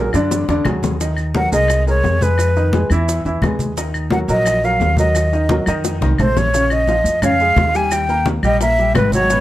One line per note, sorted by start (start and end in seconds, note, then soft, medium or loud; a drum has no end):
0.00 0.11 F#3 medium
0.00 0.11 F#4 medium
0.00 0.11 G#4 medium
0.00 0.11 A#4 medium
0.13 0.46 F#2 medium
0.13 0.43 D3 medium
0.13 0.43 D4 loud
0.13 0.43 D5 medium
0.13 high bongo medium
0.13 high conga soft
0.13 claves medium
0.13 maracas medium
0.31 low bongo medium
0.31 high conga soft
0.31 maracas medium
0.48 0.64 E2 medium
0.48 0.63 D3 medium
0.48 0.63 D4 medium
0.48 0.63 D5 medium
0.48 low bongo medium
0.48 high conga soft
0.48 maracas soft
0.65 1.46 D#2 medium
0.65 0.94 F#3 medium
0.65 0.94 F#4 medium
0.65 0.95 G#4 medium
0.65 low bongo medium
0.65 high conga medium
0.65 claves medium
0.65 maracas soft
0.83 low bongo medium
0.83 high conga medium
0.83 maracas medium
1.00 1.29 D#3 medium
1.00 1.29 D#4 medium
1.00 1.29 D#5 medium
1.00 high bongo medium
1.00 high conga soft
1.00 maracas medium
1.17 high conga soft
1.17 claves medium
1.17 maracas soft
1.35 1.49 F#3 medium
1.35 1.49 F#4 medium
1.35 1.49 A#4 medium
1.35 1.52 F#5 medium
1.35 high bongo medium
1.35 high conga medium
1.35 maracas soft
1.52 2.00 C2 medium
1.52 1.81 G#3 medium
1.52 1.81 G#4 medium
1.52 1.81 A#4 medium
1.52 1.85 D#5 loud
1.52 high bongo soft
1.52 high conga soft
1.52 maracas medium
1.68 high bongo medium
1.68 high conga soft
1.68 claves medium
1.68 maracas medium
1.87 2.15 G#3 medium
1.87 2.16 G#4 medium
1.87 2.16 A#4 medium
1.87 2.24 C#5 medium
1.87 high bongo soft
1.87 high conga soft
1.87 maracas soft
2.03 2.84 F2 loud
2.03 high bongo soft
2.03 low bongo medium
2.03 high conga soft
2.03 maracas soft
2.21 2.50 G#3 medium
2.21 2.50 G#4 medium
2.21 2.91 B4 medium
2.21 2.50 B4 medium
2.21 high bongo soft
2.21 high conga medium
2.21 maracas medium
2.38 high bongo medium
2.38 high conga soft
2.38 claves medium
2.38 maracas medium
2.56 2.70 D#3 medium
2.56 2.71 D#4 medium
2.56 2.71 D#5 medium
2.56 high conga soft
2.56 maracas soft
2.73 2.88 G#3 medium
2.73 2.88 G#4 medium
2.73 2.88 B4 medium
2.73 high bongo medium
2.73 high conga medium
2.73 maracas soft
2.90 3.22 E2 medium
2.90 3.20 E3 medium
2.90 3.20 E4 loud
2.90 3.20 E5 medium
2.90 high bongo soft
2.90 high conga soft
2.90 claves medium
2.90 maracas medium
3.09 high bongo medium
3.09 high conga soft
3.09 maracas medium
3.25 3.41 E2 medium
3.25 3.40 E3 medium
3.25 3.40 E4 medium
3.25 3.40 E5 medium
3.25 high bongo soft
3.25 high conga soft
3.25 maracas soft
3.42 4.23 D#2 medium
3.42 3.71 G#3 medium
3.42 3.72 G#4 medium
3.42 3.72 B4 medium
3.42 high bongo soft
3.42 low bongo medium
3.42 high conga medium
3.42 claves medium
3.42 maracas soft
3.59 high bongo soft
3.59 high conga medium
3.59 maracas medium
3.76 4.06 D#3 medium
3.76 4.06 D#4 medium
3.76 4.06 D#5 medium
3.76 high bongo medium
3.76 high conga soft
3.76 maracas medium
3.94 high conga soft
3.94 claves medium
3.94 maracas soft
4.10 4.26 F#3 medium
4.10 4.26 F#4 medium
4.10 4.26 A#4 medium
4.10 4.19 F#5 medium
4.10 high bongo medium
4.10 high conga medium
4.10 maracas soft
4.28 4.77 A#1 medium
4.28 4.57 F#3 medium
4.28 4.57 F#4 medium
4.28 4.58 A#4 medium
4.28 4.66 D#5 loud
4.28 high bongo soft
4.28 high conga soft
4.28 maracas medium
4.45 high bongo medium
4.45 high conga soft
4.45 claves medium
4.45 maracas medium
4.62 4.92 F#3 medium
4.62 4.92 F#4 medium
4.62 4.93 A#4 medium
4.62 4.98 F5 medium
4.62 high bongo soft
4.62 high conga soft
4.62 maracas soft
4.80 5.61 D#2 medium
4.80 high bongo soft
4.80 low bongo medium
4.80 high conga soft
4.80 maracas soft
4.97 5.27 F#3 medium
4.97 5.27 F#4 medium
4.97 5.27 A#4 medium
4.97 5.64 D#5 medium
4.97 high bongo soft
4.97 high conga medium
4.97 maracas medium
5.15 high bongo medium
5.15 high conga soft
5.15 claves medium
5.15 maracas medium
5.32 5.47 D#3 medium
5.32 5.47 D#4 medium
5.32 5.47 D#5 medium
5.32 high conga soft
5.32 maracas soft
5.49 5.65 F#3 medium
5.49 5.65 F#4 medium
5.49 5.65 A#4 medium
5.49 high bongo medium
5.49 high conga loud
5.49 maracas soft
5.66 5.99 F2 medium
5.66 5.96 D#3 loud
5.66 5.96 D#4 medium
5.66 5.96 D#5 medium
5.66 high bongo soft
5.66 high conga soft
5.66 claves medium
5.66 maracas medium
5.84 high bongo medium
5.84 high conga soft
5.84 maracas medium
6.01 6.17 C2 medium
6.01 6.16 D#3 medium
6.01 6.16 D#4 medium
6.01 6.17 D#5 medium
6.01 low bongo medium
6.01 high conga medium
6.01 maracas soft
6.18 6.99 A#1 medium
6.18 6.48 A3 medium
6.18 6.48 A4 medium
6.18 6.39 C5 medium
6.18 6.48 C5 medium
6.18 high conga loud
6.18 claves medium
6.18 maracas soft
6.37 6.74 C#5 medium
6.37 low bongo medium
6.37 low conga medium
6.37 maracas medium
6.54 6.82 C#3 medium
6.54 6.83 C#4 medium
6.54 6.83 C#5 medium
6.54 high bongo medium
6.54 high conga soft
6.54 maracas medium
6.70 7.23 D#5 loud
6.70 high bongo soft
6.70 high conga soft
6.70 claves medium
6.70 maracas soft
6.87 7.17 F3 medium
6.87 7.17 F4 medium
6.87 7.17 F5 medium
6.87 high bongo medium
6.87 high conga medium
6.87 maracas soft
7.04 7.53 F2 medium
7.04 high bongo soft
7.04 high conga soft
7.04 maracas medium
7.22 7.37 C#3 medium
7.22 7.37 C#4 medium
7.22 7.38 C#5 medium
7.22 7.78 F5 loud
7.22 high bongo medium
7.22 high conga soft
7.22 low conga medium
7.22 claves medium
7.22 maracas medium
7.39 7.69 G#3 medium
7.39 7.69 G#4 medium
7.39 7.69 G#5 medium
7.39 high conga soft
7.39 maracas soft
7.56 8.37 D#2 loud
7.56 high bongo medium
7.56 low bongo medium
7.56 high conga medium
7.56 maracas soft
7.74 8.03 G3 medium
7.74 8.03 G4 medium
7.74 8.03 G5 medium
7.74 7.94 G#5 loud
7.74 high bongo soft
7.74 high conga soft
7.74 maracas medium
7.91 8.27 G5 medium
7.91 high bongo medium
7.91 high conga soft
7.91 claves medium
7.91 maracas medium
8.08 8.37 A#3 medium
8.08 8.37 A#4 medium
8.08 8.38 A#5 medium
8.08 high bongo soft
8.08 high conga soft
8.08 maracas soft
8.26 high bongo medium
8.26 high conga loud
8.26 maracas soft
8.43 8.91 A#1 medium
8.43 8.58 G3 medium
8.43 8.58 G4 medium
8.43 8.60 D#5 loud
8.43 8.58 G5 medium
8.43 high conga soft
8.43 claves medium
8.43 maracas medium
8.61 8.76 A#3 medium
8.61 8.76 A#4 medium
8.61 8.93 E5 loud
8.61 8.76 A#5 medium
8.61 high bongo medium
8.61 high conga soft
8.61 maracas medium
8.78 9.07 G3 medium
8.78 9.07 G4 medium
8.78 9.07 G5 medium
8.78 high bongo soft
8.78 high conga soft
8.78 maracas soft
8.94 9.40 G#1 medium
8.94 9.12 B4 medium
8.94 high bongo medium
8.94 low bongo medium
8.94 high conga medium
8.94 claves medium
8.94 maracas soft
9.12 9.27 F#3 medium
9.12 9.28 F#4 medium
9.12 9.40 C#5 loud
9.12 9.28 F#5 medium
9.12 high bongo soft
9.12 high conga medium
9.12 maracas medium
9.30 9.40 B2 medium
9.30 9.40 B3 medium
9.30 9.40 B4 medium
9.30 high bongo medium
9.30 high conga soft
9.30 maracas medium